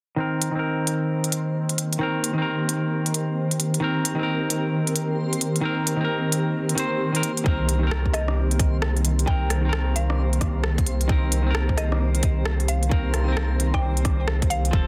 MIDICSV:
0, 0, Header, 1, 7, 480
1, 0, Start_track
1, 0, Key_signature, -3, "minor"
1, 0, Tempo, 454545
1, 200, Time_signature, 4, 2, 24, 8
1, 15704, End_track
2, 0, Start_track
2, 0, Title_t, "Synth pluck"
2, 0, Program_c, 0, 84
2, 8590, Note_on_c, 0, 75, 86
2, 8850, Note_off_c, 0, 75, 0
2, 9792, Note_on_c, 0, 79, 92
2, 10051, Note_off_c, 0, 79, 0
2, 10515, Note_on_c, 0, 77, 87
2, 11202, Note_off_c, 0, 77, 0
2, 12433, Note_on_c, 0, 75, 86
2, 12692, Note_off_c, 0, 75, 0
2, 13395, Note_on_c, 0, 77, 90
2, 13653, Note_off_c, 0, 77, 0
2, 14509, Note_on_c, 0, 79, 92
2, 14759, Note_off_c, 0, 79, 0
2, 15314, Note_on_c, 0, 77, 92
2, 15618, Note_off_c, 0, 77, 0
2, 15704, End_track
3, 0, Start_track
3, 0, Title_t, "Synth texture"
3, 0, Program_c, 1, 99
3, 191, Note_on_c, 1, 72, 84
3, 7855, Note_off_c, 1, 72, 0
3, 7868, Note_on_c, 1, 72, 87
3, 15704, Note_off_c, 1, 72, 0
3, 15704, End_track
4, 0, Start_track
4, 0, Title_t, "Ambient pad"
4, 0, Program_c, 2, 92
4, 205, Note_on_c, 2, 51, 74
4, 311, Note_on_c, 2, 58, 78
4, 548, Note_on_c, 2, 60, 83
4, 1012, Note_on_c, 2, 67, 86
4, 1248, Note_on_c, 2, 70, 70
4, 8496, Note_on_c, 2, 72, 78
4, 9554, Note_off_c, 2, 70, 0
4, 15556, Note_on_c, 2, 53, 93
4, 15560, Note_off_c, 2, 58, 0
4, 15563, Note_off_c, 2, 51, 0
4, 15704, Note_off_c, 2, 53, 0
4, 15704, Note_off_c, 2, 60, 0
4, 15704, Note_off_c, 2, 67, 0
4, 15704, Note_off_c, 2, 72, 0
4, 15704, End_track
5, 0, Start_track
5, 0, Title_t, "Clean electric guitar"
5, 0, Program_c, 3, 27
5, 173, Note_on_c, 3, 51, 68
5, 192, Note_on_c, 3, 60, 62
5, 214, Note_on_c, 3, 70, 73
5, 530, Note_off_c, 3, 51, 0
5, 542, Note_on_c, 3, 51, 67
5, 551, Note_off_c, 3, 60, 0
5, 563, Note_off_c, 3, 70, 0
5, 586, Note_on_c, 3, 60, 62
5, 625, Note_on_c, 3, 70, 76
5, 2074, Note_off_c, 3, 51, 0
5, 2096, Note_off_c, 3, 60, 0
5, 2100, Note_on_c, 3, 51, 72
5, 2116, Note_off_c, 3, 70, 0
5, 2124, Note_on_c, 3, 60, 66
5, 2145, Note_on_c, 3, 70, 76
5, 2454, Note_off_c, 3, 51, 0
5, 2467, Note_on_c, 3, 51, 70
5, 2477, Note_off_c, 3, 60, 0
5, 2488, Note_off_c, 3, 70, 0
5, 2514, Note_on_c, 3, 60, 63
5, 2554, Note_on_c, 3, 70, 77
5, 3996, Note_off_c, 3, 51, 0
5, 4013, Note_on_c, 3, 51, 74
5, 4020, Note_off_c, 3, 60, 0
5, 4036, Note_on_c, 3, 60, 68
5, 4040, Note_off_c, 3, 70, 0
5, 4054, Note_on_c, 3, 70, 76
5, 4370, Note_off_c, 3, 51, 0
5, 4383, Note_on_c, 3, 51, 74
5, 4393, Note_off_c, 3, 60, 0
5, 4403, Note_off_c, 3, 70, 0
5, 4427, Note_on_c, 3, 60, 68
5, 4467, Note_on_c, 3, 70, 76
5, 5914, Note_off_c, 3, 51, 0
5, 5928, Note_on_c, 3, 51, 74
5, 5937, Note_off_c, 3, 60, 0
5, 5949, Note_on_c, 3, 60, 67
5, 5957, Note_off_c, 3, 70, 0
5, 5970, Note_on_c, 3, 70, 81
5, 6288, Note_off_c, 3, 51, 0
5, 6301, Note_on_c, 3, 51, 74
5, 6310, Note_off_c, 3, 60, 0
5, 6320, Note_off_c, 3, 70, 0
5, 6343, Note_on_c, 3, 60, 65
5, 6384, Note_on_c, 3, 70, 80
5, 7117, Note_off_c, 3, 51, 0
5, 7131, Note_on_c, 3, 51, 80
5, 7138, Note_off_c, 3, 60, 0
5, 7154, Note_on_c, 3, 60, 78
5, 7159, Note_off_c, 3, 70, 0
5, 7175, Note_on_c, 3, 72, 92
5, 7501, Note_off_c, 3, 51, 0
5, 7512, Note_off_c, 3, 60, 0
5, 7523, Note_off_c, 3, 72, 0
5, 7524, Note_on_c, 3, 51, 68
5, 7543, Note_on_c, 3, 60, 62
5, 7565, Note_on_c, 3, 70, 76
5, 7701, Note_off_c, 3, 51, 0
5, 7710, Note_off_c, 3, 60, 0
5, 7721, Note_off_c, 3, 70, 0
5, 7856, Note_on_c, 3, 51, 73
5, 7876, Note_on_c, 3, 60, 67
5, 7899, Note_on_c, 3, 70, 81
5, 8212, Note_off_c, 3, 51, 0
5, 8224, Note_on_c, 3, 51, 73
5, 8233, Note_off_c, 3, 60, 0
5, 8245, Note_off_c, 3, 70, 0
5, 8269, Note_on_c, 3, 60, 64
5, 8311, Note_on_c, 3, 70, 81
5, 9755, Note_off_c, 3, 51, 0
5, 9778, Note_off_c, 3, 60, 0
5, 9779, Note_on_c, 3, 51, 73
5, 9798, Note_off_c, 3, 70, 0
5, 9801, Note_on_c, 3, 60, 70
5, 9824, Note_on_c, 3, 70, 81
5, 10137, Note_off_c, 3, 51, 0
5, 10150, Note_on_c, 3, 51, 74
5, 10156, Note_off_c, 3, 60, 0
5, 10167, Note_off_c, 3, 70, 0
5, 10193, Note_on_c, 3, 60, 68
5, 10234, Note_on_c, 3, 70, 83
5, 11678, Note_off_c, 3, 51, 0
5, 11697, Note_on_c, 3, 51, 77
5, 11699, Note_off_c, 3, 60, 0
5, 11717, Note_on_c, 3, 60, 71
5, 11720, Note_off_c, 3, 70, 0
5, 11739, Note_on_c, 3, 70, 82
5, 12053, Note_off_c, 3, 51, 0
5, 12065, Note_on_c, 3, 51, 74
5, 12074, Note_off_c, 3, 60, 0
5, 12085, Note_off_c, 3, 70, 0
5, 12107, Note_on_c, 3, 60, 66
5, 12150, Note_on_c, 3, 70, 81
5, 13596, Note_off_c, 3, 51, 0
5, 13616, Note_off_c, 3, 60, 0
5, 13617, Note_on_c, 3, 51, 77
5, 13637, Note_on_c, 3, 60, 67
5, 13638, Note_off_c, 3, 70, 0
5, 13657, Note_on_c, 3, 70, 81
5, 13969, Note_off_c, 3, 51, 0
5, 13982, Note_on_c, 3, 51, 75
5, 13994, Note_off_c, 3, 60, 0
5, 14004, Note_off_c, 3, 70, 0
5, 14026, Note_on_c, 3, 60, 71
5, 14068, Note_on_c, 3, 70, 83
5, 15514, Note_off_c, 3, 51, 0
5, 15534, Note_on_c, 3, 53, 72
5, 15536, Note_off_c, 3, 60, 0
5, 15557, Note_off_c, 3, 70, 0
5, 15557, Note_on_c, 3, 60, 68
5, 15578, Note_on_c, 3, 69, 83
5, 15704, Note_off_c, 3, 53, 0
5, 15704, Note_off_c, 3, 60, 0
5, 15704, Note_off_c, 3, 69, 0
5, 15704, End_track
6, 0, Start_track
6, 0, Title_t, "Sub bass"
6, 0, Program_c, 4, 38
6, 7877, Note_on_c, 4, 36, 84
6, 15541, Note_off_c, 4, 36, 0
6, 15557, Note_on_c, 4, 29, 88
6, 15704, Note_off_c, 4, 29, 0
6, 15704, End_track
7, 0, Start_track
7, 0, Title_t, "Drums"
7, 439, Note_on_c, 9, 42, 51
7, 545, Note_off_c, 9, 42, 0
7, 920, Note_on_c, 9, 42, 48
7, 1026, Note_off_c, 9, 42, 0
7, 1310, Note_on_c, 9, 42, 27
7, 1396, Note_off_c, 9, 42, 0
7, 1396, Note_on_c, 9, 42, 51
7, 1502, Note_off_c, 9, 42, 0
7, 1788, Note_on_c, 9, 42, 31
7, 1881, Note_off_c, 9, 42, 0
7, 1881, Note_on_c, 9, 42, 51
7, 1986, Note_off_c, 9, 42, 0
7, 2034, Note_on_c, 9, 42, 29
7, 2139, Note_off_c, 9, 42, 0
7, 2364, Note_on_c, 9, 42, 51
7, 2469, Note_off_c, 9, 42, 0
7, 2840, Note_on_c, 9, 42, 51
7, 2945, Note_off_c, 9, 42, 0
7, 3232, Note_on_c, 9, 42, 28
7, 3319, Note_off_c, 9, 42, 0
7, 3319, Note_on_c, 9, 42, 53
7, 3425, Note_off_c, 9, 42, 0
7, 3710, Note_on_c, 9, 42, 30
7, 3798, Note_off_c, 9, 42, 0
7, 3798, Note_on_c, 9, 42, 52
7, 3904, Note_off_c, 9, 42, 0
7, 3951, Note_on_c, 9, 42, 30
7, 4057, Note_off_c, 9, 42, 0
7, 4277, Note_on_c, 9, 42, 53
7, 4383, Note_off_c, 9, 42, 0
7, 4754, Note_on_c, 9, 42, 52
7, 4860, Note_off_c, 9, 42, 0
7, 5145, Note_on_c, 9, 42, 30
7, 5233, Note_off_c, 9, 42, 0
7, 5233, Note_on_c, 9, 42, 54
7, 5339, Note_off_c, 9, 42, 0
7, 5626, Note_on_c, 9, 42, 30
7, 5714, Note_off_c, 9, 42, 0
7, 5714, Note_on_c, 9, 42, 53
7, 5820, Note_off_c, 9, 42, 0
7, 5868, Note_on_c, 9, 42, 29
7, 5974, Note_off_c, 9, 42, 0
7, 6197, Note_on_c, 9, 42, 52
7, 6303, Note_off_c, 9, 42, 0
7, 6677, Note_on_c, 9, 42, 50
7, 6783, Note_off_c, 9, 42, 0
7, 7068, Note_on_c, 9, 42, 29
7, 7156, Note_off_c, 9, 42, 0
7, 7156, Note_on_c, 9, 42, 53
7, 7262, Note_off_c, 9, 42, 0
7, 7549, Note_on_c, 9, 42, 29
7, 7637, Note_off_c, 9, 42, 0
7, 7637, Note_on_c, 9, 42, 52
7, 7743, Note_off_c, 9, 42, 0
7, 7787, Note_on_c, 9, 42, 29
7, 7876, Note_on_c, 9, 36, 112
7, 7892, Note_off_c, 9, 42, 0
7, 7982, Note_off_c, 9, 36, 0
7, 8118, Note_on_c, 9, 42, 56
7, 8223, Note_off_c, 9, 42, 0
7, 8357, Note_on_c, 9, 37, 99
7, 8463, Note_off_c, 9, 37, 0
7, 8507, Note_on_c, 9, 36, 55
7, 8596, Note_on_c, 9, 37, 55
7, 8596, Note_on_c, 9, 42, 51
7, 8613, Note_off_c, 9, 36, 0
7, 8702, Note_off_c, 9, 37, 0
7, 8702, Note_off_c, 9, 42, 0
7, 8746, Note_on_c, 9, 37, 57
7, 8852, Note_off_c, 9, 37, 0
7, 8989, Note_on_c, 9, 42, 30
7, 9076, Note_off_c, 9, 42, 0
7, 9076, Note_on_c, 9, 36, 101
7, 9076, Note_on_c, 9, 42, 55
7, 9182, Note_off_c, 9, 36, 0
7, 9182, Note_off_c, 9, 42, 0
7, 9314, Note_on_c, 9, 37, 100
7, 9420, Note_off_c, 9, 37, 0
7, 9468, Note_on_c, 9, 42, 31
7, 9553, Note_off_c, 9, 42, 0
7, 9553, Note_on_c, 9, 42, 55
7, 9658, Note_off_c, 9, 42, 0
7, 9706, Note_on_c, 9, 42, 31
7, 9795, Note_on_c, 9, 36, 117
7, 9812, Note_off_c, 9, 42, 0
7, 9901, Note_off_c, 9, 36, 0
7, 10035, Note_on_c, 9, 37, 60
7, 10035, Note_on_c, 9, 42, 57
7, 10140, Note_off_c, 9, 37, 0
7, 10140, Note_off_c, 9, 42, 0
7, 10273, Note_on_c, 9, 37, 108
7, 10379, Note_off_c, 9, 37, 0
7, 10516, Note_on_c, 9, 42, 55
7, 10621, Note_off_c, 9, 42, 0
7, 10665, Note_on_c, 9, 37, 57
7, 10770, Note_off_c, 9, 37, 0
7, 10908, Note_on_c, 9, 42, 29
7, 10993, Note_off_c, 9, 42, 0
7, 10993, Note_on_c, 9, 37, 58
7, 10993, Note_on_c, 9, 42, 55
7, 10995, Note_on_c, 9, 36, 105
7, 11099, Note_off_c, 9, 37, 0
7, 11099, Note_off_c, 9, 42, 0
7, 11101, Note_off_c, 9, 36, 0
7, 11231, Note_on_c, 9, 37, 102
7, 11337, Note_off_c, 9, 37, 0
7, 11386, Note_on_c, 9, 36, 109
7, 11388, Note_on_c, 9, 42, 30
7, 11473, Note_off_c, 9, 42, 0
7, 11473, Note_on_c, 9, 42, 56
7, 11491, Note_off_c, 9, 36, 0
7, 11579, Note_off_c, 9, 42, 0
7, 11624, Note_on_c, 9, 42, 30
7, 11714, Note_on_c, 9, 36, 117
7, 11730, Note_off_c, 9, 42, 0
7, 11819, Note_off_c, 9, 36, 0
7, 11953, Note_on_c, 9, 42, 54
7, 12058, Note_off_c, 9, 42, 0
7, 12193, Note_on_c, 9, 37, 106
7, 12299, Note_off_c, 9, 37, 0
7, 12347, Note_on_c, 9, 36, 60
7, 12436, Note_on_c, 9, 37, 59
7, 12436, Note_on_c, 9, 42, 54
7, 12452, Note_off_c, 9, 36, 0
7, 12541, Note_off_c, 9, 37, 0
7, 12541, Note_off_c, 9, 42, 0
7, 12589, Note_on_c, 9, 37, 54
7, 12695, Note_off_c, 9, 37, 0
7, 12827, Note_on_c, 9, 42, 30
7, 12912, Note_off_c, 9, 42, 0
7, 12912, Note_on_c, 9, 42, 55
7, 12916, Note_on_c, 9, 36, 105
7, 13018, Note_off_c, 9, 42, 0
7, 13021, Note_off_c, 9, 36, 0
7, 13152, Note_on_c, 9, 37, 106
7, 13258, Note_off_c, 9, 37, 0
7, 13305, Note_on_c, 9, 42, 31
7, 13394, Note_off_c, 9, 42, 0
7, 13394, Note_on_c, 9, 42, 54
7, 13500, Note_off_c, 9, 42, 0
7, 13545, Note_on_c, 9, 42, 31
7, 13637, Note_on_c, 9, 36, 122
7, 13651, Note_off_c, 9, 42, 0
7, 13743, Note_off_c, 9, 36, 0
7, 13873, Note_on_c, 9, 37, 61
7, 13873, Note_on_c, 9, 42, 53
7, 13978, Note_off_c, 9, 37, 0
7, 13978, Note_off_c, 9, 42, 0
7, 14116, Note_on_c, 9, 37, 107
7, 14222, Note_off_c, 9, 37, 0
7, 14360, Note_on_c, 9, 42, 52
7, 14465, Note_off_c, 9, 42, 0
7, 14509, Note_on_c, 9, 36, 59
7, 14512, Note_on_c, 9, 37, 54
7, 14615, Note_off_c, 9, 36, 0
7, 14618, Note_off_c, 9, 37, 0
7, 14752, Note_on_c, 9, 42, 29
7, 14836, Note_off_c, 9, 42, 0
7, 14836, Note_on_c, 9, 37, 58
7, 14836, Note_on_c, 9, 42, 51
7, 14837, Note_on_c, 9, 36, 107
7, 14941, Note_off_c, 9, 37, 0
7, 14941, Note_off_c, 9, 42, 0
7, 14943, Note_off_c, 9, 36, 0
7, 15075, Note_on_c, 9, 37, 106
7, 15181, Note_off_c, 9, 37, 0
7, 15229, Note_on_c, 9, 36, 107
7, 15229, Note_on_c, 9, 42, 30
7, 15318, Note_off_c, 9, 42, 0
7, 15318, Note_on_c, 9, 42, 51
7, 15335, Note_off_c, 9, 36, 0
7, 15423, Note_off_c, 9, 42, 0
7, 15470, Note_on_c, 9, 42, 30
7, 15557, Note_on_c, 9, 36, 112
7, 15576, Note_off_c, 9, 42, 0
7, 15663, Note_off_c, 9, 36, 0
7, 15704, End_track
0, 0, End_of_file